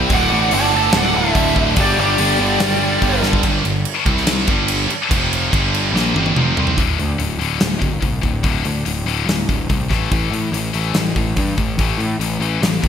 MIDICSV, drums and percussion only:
0, 0, Header, 1, 2, 480
1, 0, Start_track
1, 0, Tempo, 416956
1, 130, Time_signature, 4, 2, 24, 8
1, 14827, End_track
2, 0, Start_track
2, 0, Title_t, "Drums"
2, 111, Note_on_c, 9, 46, 61
2, 117, Note_on_c, 9, 36, 117
2, 226, Note_off_c, 9, 46, 0
2, 233, Note_off_c, 9, 36, 0
2, 588, Note_on_c, 9, 46, 64
2, 703, Note_off_c, 9, 46, 0
2, 1062, Note_on_c, 9, 46, 66
2, 1068, Note_on_c, 9, 38, 116
2, 1177, Note_off_c, 9, 46, 0
2, 1183, Note_off_c, 9, 38, 0
2, 1554, Note_on_c, 9, 46, 66
2, 1555, Note_on_c, 9, 36, 88
2, 1669, Note_off_c, 9, 46, 0
2, 1670, Note_off_c, 9, 36, 0
2, 1796, Note_on_c, 9, 36, 84
2, 1911, Note_off_c, 9, 36, 0
2, 2029, Note_on_c, 9, 46, 62
2, 2036, Note_on_c, 9, 36, 115
2, 2144, Note_off_c, 9, 46, 0
2, 2151, Note_off_c, 9, 36, 0
2, 2510, Note_on_c, 9, 46, 66
2, 2625, Note_off_c, 9, 46, 0
2, 2992, Note_on_c, 9, 46, 64
2, 2997, Note_on_c, 9, 38, 111
2, 3107, Note_off_c, 9, 46, 0
2, 3113, Note_off_c, 9, 38, 0
2, 3473, Note_on_c, 9, 46, 64
2, 3477, Note_on_c, 9, 36, 87
2, 3588, Note_off_c, 9, 46, 0
2, 3592, Note_off_c, 9, 36, 0
2, 3715, Note_on_c, 9, 38, 62
2, 3831, Note_off_c, 9, 38, 0
2, 3836, Note_on_c, 9, 36, 89
2, 3948, Note_on_c, 9, 49, 73
2, 3951, Note_off_c, 9, 36, 0
2, 3954, Note_on_c, 9, 36, 103
2, 4063, Note_off_c, 9, 49, 0
2, 4070, Note_off_c, 9, 36, 0
2, 4201, Note_on_c, 9, 49, 57
2, 4316, Note_off_c, 9, 49, 0
2, 4434, Note_on_c, 9, 49, 73
2, 4549, Note_off_c, 9, 49, 0
2, 4672, Note_on_c, 9, 49, 51
2, 4676, Note_on_c, 9, 36, 91
2, 4787, Note_off_c, 9, 49, 0
2, 4791, Note_off_c, 9, 36, 0
2, 4804, Note_on_c, 9, 38, 32
2, 4911, Note_on_c, 9, 49, 76
2, 4917, Note_off_c, 9, 38, 0
2, 4917, Note_on_c, 9, 38, 109
2, 5026, Note_off_c, 9, 49, 0
2, 5032, Note_off_c, 9, 38, 0
2, 5151, Note_on_c, 9, 49, 58
2, 5156, Note_on_c, 9, 36, 110
2, 5266, Note_off_c, 9, 49, 0
2, 5271, Note_off_c, 9, 36, 0
2, 5390, Note_on_c, 9, 49, 80
2, 5505, Note_off_c, 9, 49, 0
2, 5645, Note_on_c, 9, 49, 58
2, 5760, Note_off_c, 9, 49, 0
2, 5882, Note_on_c, 9, 36, 107
2, 5885, Note_on_c, 9, 49, 82
2, 5997, Note_off_c, 9, 36, 0
2, 6000, Note_off_c, 9, 49, 0
2, 6132, Note_on_c, 9, 49, 59
2, 6247, Note_off_c, 9, 49, 0
2, 6366, Note_on_c, 9, 36, 106
2, 6372, Note_on_c, 9, 49, 76
2, 6482, Note_off_c, 9, 36, 0
2, 6487, Note_off_c, 9, 49, 0
2, 6613, Note_on_c, 9, 49, 56
2, 6729, Note_off_c, 9, 49, 0
2, 6862, Note_on_c, 9, 38, 59
2, 6977, Note_off_c, 9, 38, 0
2, 7092, Note_on_c, 9, 48, 76
2, 7206, Note_off_c, 9, 48, 0
2, 7206, Note_on_c, 9, 48, 68
2, 7321, Note_off_c, 9, 48, 0
2, 7327, Note_on_c, 9, 47, 82
2, 7442, Note_off_c, 9, 47, 0
2, 7566, Note_on_c, 9, 43, 84
2, 7678, Note_off_c, 9, 43, 0
2, 7678, Note_on_c, 9, 43, 80
2, 7793, Note_off_c, 9, 43, 0
2, 7804, Note_on_c, 9, 36, 98
2, 7810, Note_on_c, 9, 46, 59
2, 7919, Note_off_c, 9, 36, 0
2, 7926, Note_off_c, 9, 46, 0
2, 8050, Note_on_c, 9, 46, 45
2, 8165, Note_off_c, 9, 46, 0
2, 8283, Note_on_c, 9, 46, 61
2, 8398, Note_off_c, 9, 46, 0
2, 8532, Note_on_c, 9, 46, 45
2, 8647, Note_off_c, 9, 46, 0
2, 8753, Note_on_c, 9, 46, 65
2, 8759, Note_on_c, 9, 38, 107
2, 8868, Note_off_c, 9, 46, 0
2, 8874, Note_off_c, 9, 38, 0
2, 8999, Note_on_c, 9, 36, 83
2, 8999, Note_on_c, 9, 46, 49
2, 9114, Note_off_c, 9, 36, 0
2, 9114, Note_off_c, 9, 46, 0
2, 9234, Note_on_c, 9, 46, 61
2, 9238, Note_on_c, 9, 36, 79
2, 9349, Note_off_c, 9, 46, 0
2, 9353, Note_off_c, 9, 36, 0
2, 9475, Note_on_c, 9, 46, 45
2, 9478, Note_on_c, 9, 36, 74
2, 9590, Note_off_c, 9, 46, 0
2, 9593, Note_off_c, 9, 36, 0
2, 9711, Note_on_c, 9, 46, 65
2, 9716, Note_on_c, 9, 36, 97
2, 9826, Note_off_c, 9, 46, 0
2, 9832, Note_off_c, 9, 36, 0
2, 9956, Note_on_c, 9, 46, 51
2, 10072, Note_off_c, 9, 46, 0
2, 10198, Note_on_c, 9, 46, 62
2, 10313, Note_off_c, 9, 46, 0
2, 10455, Note_on_c, 9, 46, 45
2, 10570, Note_off_c, 9, 46, 0
2, 10691, Note_on_c, 9, 46, 61
2, 10697, Note_on_c, 9, 38, 98
2, 10806, Note_off_c, 9, 46, 0
2, 10812, Note_off_c, 9, 38, 0
2, 10923, Note_on_c, 9, 36, 83
2, 10933, Note_on_c, 9, 46, 49
2, 11039, Note_off_c, 9, 36, 0
2, 11048, Note_off_c, 9, 46, 0
2, 11162, Note_on_c, 9, 46, 58
2, 11164, Note_on_c, 9, 36, 83
2, 11277, Note_off_c, 9, 46, 0
2, 11279, Note_off_c, 9, 36, 0
2, 11404, Note_on_c, 9, 36, 74
2, 11407, Note_on_c, 9, 46, 43
2, 11413, Note_on_c, 9, 38, 31
2, 11519, Note_off_c, 9, 36, 0
2, 11522, Note_off_c, 9, 46, 0
2, 11528, Note_off_c, 9, 38, 0
2, 11647, Note_on_c, 9, 36, 104
2, 11650, Note_on_c, 9, 46, 62
2, 11762, Note_off_c, 9, 36, 0
2, 11765, Note_off_c, 9, 46, 0
2, 11896, Note_on_c, 9, 46, 48
2, 12011, Note_off_c, 9, 46, 0
2, 12134, Note_on_c, 9, 46, 57
2, 12249, Note_off_c, 9, 46, 0
2, 12363, Note_on_c, 9, 46, 43
2, 12478, Note_off_c, 9, 46, 0
2, 12598, Note_on_c, 9, 46, 63
2, 12604, Note_on_c, 9, 38, 99
2, 12713, Note_off_c, 9, 46, 0
2, 12719, Note_off_c, 9, 38, 0
2, 12847, Note_on_c, 9, 46, 50
2, 12848, Note_on_c, 9, 36, 82
2, 12962, Note_off_c, 9, 46, 0
2, 12963, Note_off_c, 9, 36, 0
2, 13084, Note_on_c, 9, 46, 68
2, 13088, Note_on_c, 9, 36, 82
2, 13199, Note_off_c, 9, 46, 0
2, 13204, Note_off_c, 9, 36, 0
2, 13327, Note_on_c, 9, 46, 47
2, 13329, Note_on_c, 9, 36, 77
2, 13442, Note_off_c, 9, 46, 0
2, 13444, Note_off_c, 9, 36, 0
2, 13569, Note_on_c, 9, 46, 64
2, 13571, Note_on_c, 9, 36, 100
2, 13684, Note_off_c, 9, 46, 0
2, 13686, Note_off_c, 9, 36, 0
2, 13818, Note_on_c, 9, 46, 46
2, 13933, Note_off_c, 9, 46, 0
2, 14058, Note_on_c, 9, 46, 65
2, 14173, Note_off_c, 9, 46, 0
2, 14299, Note_on_c, 9, 46, 46
2, 14414, Note_off_c, 9, 46, 0
2, 14538, Note_on_c, 9, 46, 61
2, 14543, Note_on_c, 9, 38, 99
2, 14653, Note_off_c, 9, 46, 0
2, 14658, Note_off_c, 9, 38, 0
2, 14777, Note_on_c, 9, 36, 87
2, 14781, Note_on_c, 9, 46, 49
2, 14827, Note_off_c, 9, 36, 0
2, 14827, Note_off_c, 9, 46, 0
2, 14827, End_track
0, 0, End_of_file